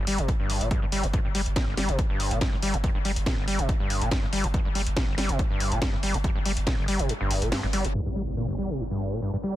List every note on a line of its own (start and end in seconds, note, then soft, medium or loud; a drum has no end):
0.07 0.18 G1 medium
0.07 0.20 G3 loud
0.07 open hi-hat loud
0.18 0.28 G1 medium
0.18 0.30 C3 medium
0.18 closed hi-hat medium
0.28 0.32 G2 medium
0.28 kick loud
0.28 closed hi-hat medium
0.40 0.49 G1 medium
0.40 0.63 G2 medium
0.50 0.60 G1 loud
0.50 open hi-hat loud
0.61 0.71 G1 medium
0.61 0.69 A#2 medium
0.61 closed hi-hat medium
0.71 0.80 G2 medium
0.71 kick loud
0.71 closed hi-hat medium
0.82 0.92 G1 medium
0.82 0.86 G2 loud
0.92 1.03 G1 loud
0.92 1.05 G3 loud
0.92 open hi-hat loud
1.03 1.13 G1 medium
1.03 1.07 G2 medium
1.03 closed hi-hat medium
1.13 1.20 G2 loud
1.13 kick loud
1.13 closed hi-hat medium
1.25 1.34 G1 medium
1.25 1.28 G2 medium
1.35 1.46 G1 loud
1.35 1.41 G3 loud
1.35 open hi-hat loud
1.46 1.56 G1 medium
1.46 closed hi-hat medium
1.56 1.65 A#2 medium
1.56 kick loud
1.56 snare loud
1.56 closed hi-hat medium
1.67 1.76 G1 loud
1.67 1.77 G1 medium
1.77 1.88 G1 loud
1.77 1.90 G3 loud
1.77 snare medium
1.77 open hi-hat loud
1.89 1.99 G1 medium
1.89 2.00 C3 medium
1.89 closed hi-hat medium
1.99 2.02 G2 medium
1.99 kick loud
1.99 closed hi-hat medium
2.10 2.19 G1 medium
2.10 2.33 G2 medium
2.20 2.31 G1 loud
2.20 open hi-hat loud
2.31 2.41 G1 medium
2.31 2.39 A#2 medium
2.31 closed hi-hat medium
2.41 2.51 G2 medium
2.41 kick loud
2.41 snare loud
2.41 closed hi-hat medium
2.52 2.62 G1 medium
2.52 2.56 G2 loud
2.63 2.73 G1 loud
2.63 2.75 G3 loud
2.63 open hi-hat loud
2.74 2.84 G1 medium
2.74 2.77 G2 medium
2.74 closed hi-hat medium
2.84 2.90 G2 loud
2.84 kick loud
2.84 closed hi-hat medium
2.95 3.04 G1 medium
2.95 2.98 G2 medium
3.05 3.16 G1 loud
3.05 3.11 G3 loud
3.05 open hi-hat loud
3.16 3.26 G1 medium
3.16 closed hi-hat medium
3.26 3.36 A#2 medium
3.26 kick loud
3.26 snare loud
3.26 closed hi-hat medium
3.38 3.46 G1 loud
3.38 3.47 G1 medium
3.48 3.58 G1 loud
3.48 3.60 G3 loud
3.48 open hi-hat loud
3.59 3.69 G1 medium
3.59 3.70 C3 medium
3.59 closed hi-hat medium
3.69 3.73 G2 medium
3.69 kick loud
3.69 closed hi-hat medium
3.80 3.90 G1 medium
3.80 4.03 G2 medium
3.90 4.01 G1 loud
3.90 open hi-hat loud
4.01 4.11 G1 medium
4.01 4.10 A#2 medium
4.01 closed hi-hat medium
4.11 4.21 G2 medium
4.11 kick loud
4.11 snare loud
4.11 closed hi-hat medium
4.23 4.32 G1 medium
4.23 4.26 G2 loud
4.33 4.43 G1 loud
4.33 4.46 G3 loud
4.33 open hi-hat loud
4.44 4.54 G1 medium
4.44 4.47 G2 medium
4.44 closed hi-hat medium
4.54 4.60 G2 loud
4.54 kick loud
4.54 closed hi-hat medium
4.65 4.75 G1 medium
4.65 4.69 G2 medium
4.75 4.86 G1 loud
4.75 4.81 G3 loud
4.75 open hi-hat loud
4.87 4.96 G1 medium
4.87 closed hi-hat medium
4.97 5.06 A#2 medium
4.97 kick loud
4.97 snare loud
4.97 closed hi-hat medium
5.08 5.16 G1 loud
5.08 5.17 G1 medium
5.18 5.29 G1 loud
5.18 5.31 G3 loud
5.18 snare medium
5.18 open hi-hat loud
5.29 5.39 G1 medium
5.29 5.41 C3 medium
5.29 closed hi-hat medium
5.39 5.43 G2 medium
5.39 kick loud
5.39 closed hi-hat medium
5.50 5.60 G1 medium
5.50 5.73 G2 medium
5.60 5.71 G1 loud
5.60 open hi-hat loud
5.72 5.81 G1 medium
5.72 5.80 A#2 medium
5.72 closed hi-hat medium
5.82 5.91 G2 medium
5.82 kick loud
5.82 snare loud
5.82 closed hi-hat medium
5.93 6.02 G1 medium
5.93 5.96 G2 loud
6.03 6.14 G1 loud
6.03 6.16 G3 loud
6.03 open hi-hat loud
6.14 6.24 G1 medium
6.14 6.17 G2 medium
6.14 closed hi-hat medium
6.24 6.30 G2 loud
6.24 kick loud
6.24 closed hi-hat medium
6.36 6.45 G1 medium
6.36 6.39 G2 medium
6.45 6.56 G1 loud
6.45 6.52 G3 loud
6.45 open hi-hat loud
6.57 6.67 G1 medium
6.57 closed hi-hat medium
6.67 6.76 A#2 medium
6.67 kick loud
6.67 snare loud
6.67 closed hi-hat medium
6.78 6.87 G1 medium
6.78 6.86 G1 loud
6.88 6.99 G1 loud
6.88 7.01 G3 loud
6.88 open hi-hat loud
6.99 7.09 G1 medium
6.99 7.11 C3 medium
6.99 closed hi-hat medium
7.09 7.13 G2 medium
7.09 closed hi-hat medium
7.21 7.30 G1 medium
7.21 7.43 G2 medium
7.31 7.41 G1 loud
7.31 open hi-hat loud
7.42 7.52 G1 medium
7.42 7.50 A#2 medium
7.42 closed hi-hat medium
7.52 7.61 G2 medium
7.52 snare loud
7.52 open hi-hat medium
7.63 7.73 G1 medium
7.63 7.66 G2 loud
7.73 7.84 G1 loud
7.73 7.86 G3 loud
7.73 open hi-hat loud
7.84 7.94 G1 medium
7.84 7.88 G2 medium
7.84 closed hi-hat medium
7.94 8.01 G2 loud
7.94 closed hi-hat medium
7.94 impact medium
8.06 8.09 G2 medium
8.16 8.22 G3 loud
8.16 closed hi-hat medium
8.27 closed hi-hat medium
8.37 8.46 A#2 medium
8.37 closed hi-hat medium
8.48 8.57 G1 loud
8.58 8.71 G3 loud
8.58 closed hi-hat medium
8.70 8.81 C3 medium
8.70 closed hi-hat medium
8.80 8.83 G2 medium
8.80 closed hi-hat medium
8.91 9.14 G2 medium
9.01 closed hi-hat medium
9.12 9.20 A#2 medium
9.12 closed hi-hat medium
9.22 9.31 G2 medium
9.22 closed hi-hat medium
9.33 9.37 G2 loud
9.43 9.56 G3 loud
9.43 closed hi-hat medium